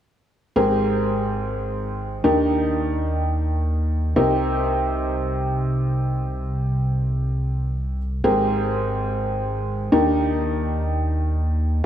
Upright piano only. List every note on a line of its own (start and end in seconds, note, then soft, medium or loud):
0.56 2.21 G#2 medium
0.56 2.21 C4 medium
0.56 2.21 G4 medium
0.56 2.21 G#4 medium
0.56 2.21 A#4 medium
2.24 4.13 D#3 medium
2.24 4.13 D4 medium
2.24 4.13 D#4 medium
2.24 4.13 G4 medium
2.24 4.13 A#4 medium
4.16 7.97 C3 medium
4.16 7.97 C4 medium
4.16 7.97 D#4 medium
4.16 7.97 G4 medium
4.16 7.97 A#4 medium
8.24 9.89 G#2 medium
8.24 9.89 C4 medium
8.24 9.90 G4 medium
8.24 9.89 G#4 medium
8.24 9.89 A#4 medium
9.92 11.82 D#3 medium
9.92 11.81 D4 medium
9.92 11.82 D#4 medium
9.92 11.82 G4 medium
9.92 11.81 A#4 medium